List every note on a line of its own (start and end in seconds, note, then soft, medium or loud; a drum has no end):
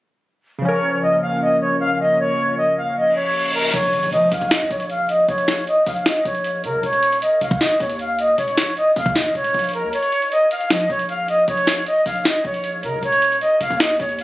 0.58 3.67 C#3 medium
0.58 3.69 F3 medium
0.64 3.71 A#3 medium
0.64 3.70 C#4 medium
0.64 3.71 F4 medium
0.64 3.71 A#4 medium
0.64 3.71 C#5 medium
0.64 1.00 C#5 loud
0.69 3.72 A#4 medium
1.02 1.21 D#5 medium
1.22 1.40 F5 medium
1.41 1.59 D#5 medium
1.61 1.79 C#5 medium
1.80 1.98 F5 medium
2.00 2.18 D#5 medium
2.19 2.55 C#5 loud
2.57 2.76 D#5 medium
2.77 2.95 F5 medium
2.96 3.14 D#5 medium
2.96 reverse cymbal medium
3.15 3.52 C#5 medium
3.54 3.72 A#4 medium
3.73 4.14 A#1 loud
3.73 4.10 C#5 loud
3.73 closed hi-hat medium
3.73 crash loud
3.73 impact medium
3.83 closed hi-hat medium
3.93 closed hi-hat medium
4.03 closed hi-hat medium
4.12 4.31 F3 loud
4.12 4.30 D#5 medium
4.12 closed hi-hat medium
4.32 4.41 A#1 loud
4.32 4.50 F5 medium
4.32 closed hi-hat medium
4.41 4.62 A#1 loud
4.41 closed hi-hat soft
4.51 4.69 D#5 medium
4.51 snare loud
4.51 closed hi-hat medium
4.61 4.70 F2 loud
4.61 closed hi-hat medium
4.70 5.26 A#1 loud
4.70 4.89 C#5 medium
4.70 closed hi-hat medium
4.80 closed hi-hat medium
4.90 5.08 F5 medium
4.90 closed hi-hat medium
5.09 5.27 D#5 medium
5.09 closed hi-hat medium
5.28 5.66 A#1 loud
5.28 5.65 C#5 medium
5.28 closed hi-hat medium
5.38 closed hi-hat medium
5.48 snare medium
5.48 closed hi-hat medium
5.58 closed hi-hat medium
5.67 5.85 D#5 medium
5.67 closed hi-hat medium
5.86 6.05 A#1 loud
5.86 6.05 F5 medium
5.86 open hi-hat medium
5.96 closed hi-hat soft
6.06 6.24 D#5 medium
6.06 snare loud
6.06 closed hi-hat medium
6.15 closed hi-hat medium
6.25 6.65 A#1 loud
6.25 6.62 C#5 medium
6.25 closed hi-hat medium
6.35 closed hi-hat medium
6.44 closed hi-hat medium
6.64 6.75 C#3 loud
6.64 6.82 A#4 medium
6.64 closed hi-hat medium
6.74 6.83 A#1 loud
6.83 7.20 D#1 loud
6.83 7.20 C#5 loud
6.83 closed hi-hat medium
6.93 closed hi-hat medium
7.03 closed hi-hat medium
7.12 closed hi-hat medium
7.22 7.40 D#5 medium
7.22 closed hi-hat medium
7.41 7.60 D#1 loud
7.41 7.59 F5 medium
7.41 closed hi-hat medium
7.51 kick loud
7.51 closed hi-hat soft
7.60 7.78 D#5 medium
7.60 snare loud
7.60 closed hi-hat medium
7.70 closed hi-hat soft
7.80 8.36 D#2 loud
7.80 7.98 C#5 medium
7.80 closed hi-hat medium
7.90 closed hi-hat medium
7.99 8.18 F5 medium
7.99 closed hi-hat medium
8.19 8.37 D#5 medium
8.19 closed hi-hat medium
8.37 8.59 D#1 loud
8.37 8.74 C#5 loud
8.37 closed hi-hat medium
8.48 closed hi-hat medium
8.57 8.76 C#1 loud
8.57 snare medium
8.57 closed hi-hat medium
8.67 closed hi-hat medium
8.77 8.95 D#5 loud
8.77 closed hi-hat medium
8.96 9.27 D#2 loud
8.96 9.15 F5 medium
8.96 open hi-hat medium
9.06 kick loud
9.06 closed hi-hat soft
9.16 9.34 D#5 medium
9.16 snare loud
9.16 closed hi-hat medium
9.25 9.34 C#1 loud
9.25 closed hi-hat soft
9.35 9.53 D#1 loud
9.35 9.71 C#5 medium
9.35 closed hi-hat medium
9.44 closed hi-hat medium
9.54 9.85 A#1 loud
9.54 closed hi-hat medium
9.59 closed hi-hat medium
9.64 closed hi-hat medium
9.69 closed hi-hat medium
9.73 9.92 A#4 medium
9.73 closed hi-hat medium
9.83 9.93 D#2 loud
9.93 10.29 C#5 loud
9.93 closed hi-hat medium
10.02 closed hi-hat medium
10.12 closed hi-hat medium
10.22 closed hi-hat medium
10.32 10.50 D#5 medium
10.32 closed hi-hat medium
10.51 10.69 F5 medium
10.51 closed hi-hat medium
10.61 closed hi-hat soft
10.70 10.89 F3 loud
10.70 10.89 D#5 medium
10.70 snare loud
10.70 closed hi-hat medium
10.80 closed hi-hat medium
10.90 11.45 A#1 loud
10.90 11.08 C#5 medium
10.90 closed hi-hat medium
10.99 closed hi-hat medium
11.09 11.27 F5 medium
11.09 closed hi-hat medium
11.28 11.46 D#5 medium
11.28 closed hi-hat medium
11.48 11.85 A#1 loud
11.48 11.84 C#5 medium
11.48 closed hi-hat medium
11.57 closed hi-hat medium
11.67 snare medium
11.67 closed hi-hat medium
11.77 closed hi-hat medium
11.87 12.05 D#5 medium
11.87 closed hi-hat medium
12.06 12.24 A#1 loud
12.06 12.24 F5 medium
12.06 open hi-hat medium
12.15 closed hi-hat soft
12.25 12.44 D#5 medium
12.25 snare loud
12.25 closed hi-hat medium
12.35 closed hi-hat medium
12.45 12.85 A#1 loud
12.45 12.81 C#5 medium
12.45 closed hi-hat medium
12.54 closed hi-hat medium
12.64 closed hi-hat medium
12.83 12.94 C#3 loud
12.83 13.02 A#4 medium
12.83 closed hi-hat medium
12.93 13.02 A#1 loud
13.03 13.40 D#1 loud
13.03 13.39 C#5 loud
13.03 closed hi-hat medium
13.12 closed hi-hat medium
13.22 closed hi-hat medium
13.32 closed hi-hat medium
13.41 13.59 D#5 medium
13.41 closed hi-hat medium
13.61 13.70 D#1 loud
13.61 13.79 F5 medium
13.61 closed hi-hat medium
13.70 13.98 D#2 loud
13.70 closed hi-hat soft
13.79 13.98 D#5 medium
13.79 snare loud
13.79 closed hi-hat medium
13.90 closed hi-hat medium
13.99 14.24 D#2 loud
13.99 14.18 C#5 medium
13.99 closed hi-hat medium
14.09 closed hi-hat medium
14.19 14.24 F5 medium
14.19 closed hi-hat medium